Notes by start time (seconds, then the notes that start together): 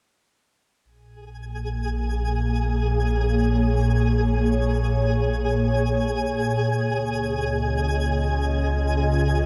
0.85 A#1 A#2 G#4 G#5
1.21 A#3
1.68 G#4
2.55 C#5
6.65 C#2 C#3
6.90 C#4
7.02 D#5
7.38 F4